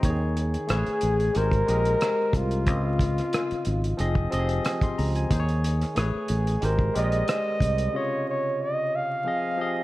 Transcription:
Already playing: tine electric piano G5
0.01 fingered electric bass D#2, tine electric piano D#3 D#4 G4 C#5, kick, closed hi-hat
0.10 tine electric piano G#4
0.37 flugelhorn G#4, closed hi-hat
0.54 closed hi-hat
0.67 fingered electric bass A1, tine electric piano A3 G#4 B4 C#5, cross-stick, closed hi-hat
0.86 closed hi-hat
1.01 fingered electric bass A1, closed hi-hat
1.20 closed hi-hat
1.33 fingered electric bass G#1, tine electric piano G#3 G4 A#4 C5, flugelhorn A#4, closed hi-hat
1.51 kick, closed hi-hat
1.66 fingered electric bass A#1, tine electric piano G#3 G4 A#4 D#5, closed hi-hat
1.85 closed hi-hat
2.01 cross-stick, closed hi-hat
2.33 fingered electric bass C2, flugelhorn F4, kick, closed hi-hat
2.51 closed hi-hat
2.65 fingered electric bass C#2, tine electric piano C#3 C4 F4 D#5, kick, closed hi-hat
2.99 kick, closed hi-hat
3.18 cross-stick, closed hi-hat
3.33 cross-stick, closed hi-hat
3.51 muted fingered electric bass stroke, closed hi-hat
3.65 fingered electric bass G#1, closed hi-hat
3.84 closed hi-hat
3.97 fingered electric bass F1, tine electric piano F3 C4 G#4 D#5, closed hi-hat
4.15 kick
4.30 fingered electric bass F1, tine electric piano F3 C4 G4 D#5, closed hi-hat
4.39 tine electric piano G#4
4.49 closed hi-hat
4.65 cross-stick, closed hi-hat
4.81 tine electric piano C6, kick, closed hi-hat
4.98 fingered electric bass C#2, tine electric piano A#5, open hi-hat
5.15 tine electric piano G#5, closed hi-hat
5.29 fingered electric bass D#2, tine electric piano D#3 D#4 G#4 C5, kick, closed hi-hat
5.40 tine electric piano C#5
5.49 closed hi-hat
5.64 flugelhorn G#4, closed hi-hat
5.82 cross-stick, closed hi-hat
5.95 fingered electric bass A1, tine electric piano A3 G#4 B4 C#5, cross-stick, closed hi-hat
6.15 muted fingered electric bass stroke
6.28 fingered electric bass A1, closed hi-hat
6.47 closed hi-hat
6.61 fingered electric bass G#1, tine electric piano G#3 G4 A#4 C5, flugelhorn A#4, closed hi-hat
6.79 kick
6.93 fingered electric bass A#1, tine electric piano G#3 G4 A#4 D5, flugelhorn D#5, closed hi-hat
7.04 tine electric piano D#5
7.12 closed hi-hat
7.28 cross-stick, closed hi-hat
7.61 fingered electric bass C2, kick, closed hi-hat
7.78 closed hi-hat
7.92 tine electric piano C3 C#3 F4 D#5, flugelhorn C#5
8.29 flugelhorn C#5
8.62 flugelhorn D#5
8.95 flugelhorn F5
9.24 tine electric piano F3 C4 G#4 D#5
9.58 tine electric piano F3 C4 G4 D#5
9.67 tine electric piano G#4

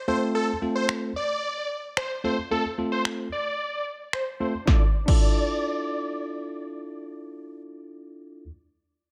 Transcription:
0.08 tine electric piano A3 C4 F4 A4, supersaw synth C5
0.35 supersaw synth A4
0.62 tine electric piano A3 C4 F4 A4
0.75 supersaw synth C5
0.89 finger snap
1.16 supersaw synth D5
1.97 supersaw synth C5, finger snap
2.24 tine electric piano A3 C4 F4 A4, supersaw synth C5
2.51 tine electric piano A3 C4 F4 A4, supersaw synth A4
2.78 tine electric piano A3 C4 F4 A4
2.92 supersaw synth C5
3.05 finger snap
3.32 supersaw synth D5
4.13 supersaw synth C5, finger snap
4.40 tine electric piano A3 C4 F4 A4, supersaw synth C5
4.66 tine electric piano D4 E4 F4 A4, supersaw synth D5, kick, snare
5.06 tine electric piano D4 E4 F4 A4, supersaw synth D5, kick, crash

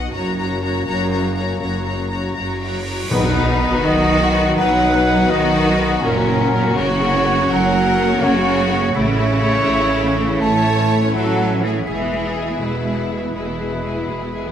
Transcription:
Already playing: french horn section B3 D#4, viola section F#4, violin section D#5 F#5
0.12 double bass section F#1, cello section F#2, french horn section A#3 C#4, viola section F#4, violin section C#5 A#5
0.36 viola section F#4, violin section C#5 A#5
0.62 viola section F#4, violin section C#5 A#5
0.86 double bass section F#1, cello section F#2, viola section F#4, violin section C#5 A#5
1.11 viola section F#4, violin section C#5 A#5
1.37 viola section F#4, violin section C#5 A#5
1.60 double bass section F#1, cello section F#2, viola section F#4, violin section C#5 A#5, cymbal swell
1.86 viola section F#4, violin section C#5 A#5
2.10 viola section F#4, violin section C#5 A#5
2.36 double bass section F#1, cello section F#2, viola section F#4, violin section C#5 A#5
2.60 viola section F#4, violin section C#5 A#5
2.85 viola section F#4, violin section C#5 A#5
3.10 double bass section B1, cello section B2, timpani B2, viola section D#3 D#4, french horn section F#3 D#4, violin section D#4 B4, pipe organ D#4 F#4 B4 F#5, trumpet section B4, sub drop
3.22 viola section F#3 B3, violin section F#4
3.35 viola section D#3 D#4, violin section B4
3.47 viola section F#3 B3, violin section F#4
3.59 viola section D#3 D#4, violin section B4
3.71 viola section F#3 B3, violin section F#4
3.82 double bass section B1, cello section D#3, viola section D#3 D#4, violin section F#4 B4, trumpet section D#5
3.95 viola section F#3 B3, violin section F#4
4.07 viola section D#3 D#4, violin section B4
4.20 viola section F#3 B3, violin section F#4
4.32 viola section D#3 D#4, violin section B4
4.44 viola section F#3 B3, violin section F#4
4.57 double bass section B1, viola section D#3 D#4, cello section F#3, violin section B4, trumpet section F#5
4.69 viola section F#3 B3, violin section F#4
4.81 viola section D#3 D#4, violin section B4
4.93 viola section F#3 B3, violin section F#4
5.05 viola section D#3 D#4, violin section B4
5.18 viola section F#3 B3, violin section F#4
5.30 double bass section B1, cello section D#3, viola section D#3 D#4, violin section F#4 B4, trumpet section D#5
5.42 viola section F#3 B3, violin section F#4
5.54 viola section D#3 D#4, violin section B4
5.67 viola section F#3 B3, violin section F#4
5.79 viola section D#3 D#4, violin section B4
5.90 viola section F#3 B3, violin section F#4
6.03 double bass section F#1, cello section A#2, french horn section F#3 C#4, viola section A#3 C#4, pipe organ C#4 C#5, violin section C#4 A#4, trumpet section A#4
6.16 viola section F#3 A#3, violin section F#4
6.28 viola section A#3 C#4, violin section A#4
6.40 viola section F#3 A#3, violin section F#4
6.52 viola section A#3 C#4, violin section A#4
6.63 viola section F#3 A#3, violin section F#4
6.76 double bass section F#1, cello section C#3, viola section A#3 C#4, violin section F#4 A#4, trumpet section C#5
6.89 viola section F#3 A#3, violin section F#4
7.00 viola section A#3 C#4, violin section A#4
7.13 viola section F#3 A#3, violin section F#4
7.24 viola section A#3 C#4, violin section A#4
7.36 viola section F#3 A#3, violin section F#4
7.48 double bass section F#1, cello section F#3, viola section A#3 C#4, violin section A#4, trumpet section F#5
7.61 viola section F#3 A#3, violin section F#4
7.74 viola section A#3 C#4, violin section A#4
7.86 viola section F#3 A#3, violin section F#4
7.97 viola section A#3 C#4, violin section A#4
8.09 viola section F#3 A#3, violin section F#4
8.21 double bass section F#1, cello section C#3, viola section A#3 C#4, violin section F#4 A#4, trumpet section C#5
8.34 viola section F#3 A#3, violin section F#4
8.47 viola section A#3 C#4, violin section A#4
8.58 viola section F#3 A#3, violin section F#4
8.70 viola section A#3 C#4, violin section A#4
8.82 viola section F#3 A#3, violin section F#4
8.94 double bass section A1, cello section C#3, french horn section E3 E4, viola section A3, violin section E4, pipe organ E4 A4 E5, trumpet section C#5
9.07 viola section E3 C#4, violin section C#4
9.19 viola section A3, violin section E4
9.31 viola section E3 C#4, violin section C#4
9.43 viola section A3, violin section E4
9.54 viola section E3 C#4, violin section C#4
9.66 double bass section A1, viola section A3, violin section E4
9.79 viola section E3 C#4, violin section C#4
9.91 viola section A3, violin section E4
10.04 viola section E3 C#4, violin section C#4
10.17 viola section A3, violin section E4
10.29 viola section E3 C#4, violin section C#4
10.40 double bass section A1, viola section A3, cello section A3, violin section E4 C#5, trumpet section A5
10.52 viola section E3 C#4, violin section C#4
10.64 viola section A3, violin section E4
10.77 viola section E3 C#4, violin section C#4
10.88 viola section A3, violin section E4
11.01 viola section E3 C#4, violin section C#4
11.13 double bass section A1, cello section F#3, viola section A3, violin section E4 A4, trumpet section F#5
11.26 viola section E3 C#4, violin section C#4
11.38 viola section A3, violin section E4
11.50 viola section E3 C#4, violin section C#4
11.62 cello section E3, viola section A3, violin section E4 G#4, trumpet section E5
11.74 viola section E3 C#4, violin section C#4
11.86 double bass section E1, cello section E3, french horn section G#3 E4, viola section G#3, violin section G#4, pipe organ G#4 E5, trumpet section E5
12.00 viola section E3 B3, violin section E4
12.12 viola section G#3, violin section G#4
12.24 viola section E3 B3, violin section E4
12.36 viola section G#3, violin section G#4
12.48 viola section E3 B3, violin section E4
12.60 double bass section E1, cello section B2, viola section G#3, violin section E4 G#4, trumpet section B4
12.72 viola section E3 B3, violin section E4
12.85 viola section G#3, violin section G#4
12.98 viola section E3 B3, violin section E4
13.10 viola section G#3, violin section G#4
13.23 viola section E3 B3, violin section E4
13.34 double bass section E1, cello section B2, viola section G#3, violin section E4 G#4, trumpet section B4
13.47 viola section E3 B3, violin section E4
13.59 viola section G#3, violin section G#4
13.72 viola section E3 B3, violin section E4
13.84 viola section G#3, violin section G#4
13.96 viola section E3 B3, violin section E4
14.08 double bass section E1, viola section G#3, violin section G#4
14.21 viola section E3 B3, violin section E4
14.33 viola section G#3, violin section G#4
14.46 viola section E3 B3, violin section E4

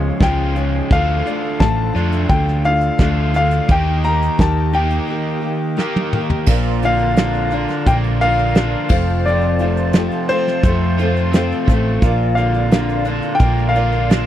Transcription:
Already playing: picked electric bass C#2, overdriven electric guitar C#3 F3 G#3 C#4 F4, steel-string acoustic guitar G#3 C#4 F4, accordion G#4 F5 C6, grand piano C#5
0.20 picked electric bass C#2, steel-string acoustic guitar C#3 F3 G#3 C#4 F4, grand piano G5, kick, snare, closed hi-hat
0.56 steel-string acoustic guitar G#3 C#4 F4, closed hi-hat
0.91 picked electric bass D2, steel-string acoustic guitar D3 F3 A3 D4 F4, accordion A4 F5 D6, grand piano F5, kick, closed hi-hat
1.25 steel-string acoustic guitar A3 D4 F4, closed hi-hat
1.59 picked electric bass A1, steel-string acoustic guitar D3 F3 A3 D4 F4, grand piano A5, kick, snare, closed hi-hat
1.93 picked electric bass F2, steel-string acoustic guitar A3 D4 F4, closed hi-hat
1.98 overdriven electric guitar D3
2.12 closed hi-hat
2.29 picked electric bass D2, steel-string acoustic guitar F3 A3 D4 F4, grand piano G5, kick, closed hi-hat
2.48 snare
2.64 steel-string acoustic guitar A3 D4 F4, grand piano F5, closed hi-hat
2.81 closed hi-hat
2.98 picked electric bass D2, steel-string acoustic guitar D3 F3 A3 D4 F4, kick, snare, closed hi-hat
3.34 steel-string acoustic guitar A3 D4 F4, grand piano F5, closed hi-hat
3.51 closed hi-hat
3.68 picked electric bass D#2, steel-string acoustic guitar D#3 A#3 G4, overdriven electric guitar D#4, accordion G4 D#5, grand piano G5, kick, closed hi-hat
4.04 steel-string acoustic guitar A#3 G4, grand piano A#5, closed hi-hat
4.22 closed hi-hat
4.38 picked electric bass D#2, steel-string acoustic guitar D#3 A#3 G4, grand piano A5, kick, snare, closed hi-hat
4.73 steel-string acoustic guitar A#3 G4, overdriven electric guitar D#4, grand piano G5, closed hi-hat
4.77 overdriven electric guitar D#3
4.90 closed hi-hat
5.07 steel-string acoustic guitar D#3 A#3 G4
5.41 steel-string acoustic guitar A#3 G4
5.76 steel-string acoustic guitar D#3 A#3 G4, overdriven electric guitar D#4, snare
5.96 high tom
6.13 steel-string acoustic guitar G4, mid tom
6.17 steel-string acoustic guitar A#3
6.30 floor tom
6.46 picked electric bass A#1, steel-string acoustic guitar A#2 F3 A#3 D4 F4, accordion F4 D5 A#5, reed electric piano A#4 D5 F5, kick, crash
6.83 overdriven electric guitar D3, steel-string acoustic guitar A#3 D4 F4, grand piano F5, closed hi-hat
6.99 closed hi-hat
7.16 steel-string acoustic guitar A#2 F3 A#3 D4 F4, overdriven electric guitar D3, snare, closed hi-hat
7.34 closed hi-hat
7.50 steel-string acoustic guitar A#3 D4 F4, closed hi-hat
7.68 snare, closed hi-hat
7.86 picked electric bass A#1, steel-string acoustic guitar F3 A#3 D4 F4, grand piano G5, kick, closed hi-hat
8.04 closed hi-hat
8.21 steel-string acoustic guitar A#3 D4 F4, reed electric piano A#4 D5 F5, grand piano F5, closed hi-hat
8.38 closed hi-hat
8.55 steel-string acoustic guitar A#2 F3 A#3 D4 F4, snare, closed hi-hat
8.89 picked electric bass F1, overdriven electric guitar F2, steel-string acoustic guitar C4 F4, accordion F4 C5 A5, reed electric piano A4 C5 F5, kick, crash
8.93 steel-string acoustic guitar F3 A3
9.26 steel-string acoustic guitar F2 C3 F3 A3 C4 F4, grand piano D5
9.41 closed hi-hat
9.59 overdriven electric guitar C3, steel-string acoustic guitar A3 C4 F4, closed hi-hat
9.63 steel-string acoustic guitar F3
9.77 closed hi-hat
9.93 steel-string acoustic guitar F2 C3 F3 A3 C4 F4, snare, closed hi-hat
10.11 closed hi-hat
10.28 steel-string acoustic guitar F3 A3 C4 F4, grand piano C5, closed hi-hat
10.47 snare
10.63 picked electric bass F2, steel-string acoustic guitar F3 A3 C4 F4, kick, closed hi-hat
10.98 steel-string acoustic guitar F3 A3 C4 F4, reed electric piano A4 C5 F5, closed hi-hat
11.16 closed hi-hat
11.33 steel-string acoustic guitar F2 C3 F3 A3 C4 F4, snare, closed hi-hat
11.52 closed hi-hat
11.68 picked electric bass A1, steel-string acoustic guitar F3 A3 C4 F4, kick, closed hi-hat
12.02 picked electric bass A#1, steel-string acoustic guitar A#2 F3 A#3 D4 F4, reed electric piano A#4 D5 F5, accordion D5 A#5, kick, closed hi-hat
12.35 overdriven electric guitar D3, steel-string acoustic guitar A#3 D4 F4, grand piano F5, closed hi-hat
12.54 closed hi-hat
12.71 steel-string acoustic guitar A#2 F3 A#3 D4 F4, overdriven electric guitar D3, snare, closed hi-hat
12.89 closed hi-hat
13.05 steel-string acoustic guitar A#3 D4 F4, closed hi-hat
13.22 closed hi-hat
13.35 grand piano G5
13.39 picked electric bass A#1, steel-string acoustic guitar F3 A#3 D4 F4, kick, closed hi-hat
13.58 closed hi-hat
13.69 grand piano F5
13.75 steel-string acoustic guitar A#3 D4 F4, reed electric piano A#4 D5 F5, closed hi-hat
13.92 closed hi-hat
14.09 steel-string acoustic guitar A#2 F3 A#3 D4 F4, snare, closed hi-hat

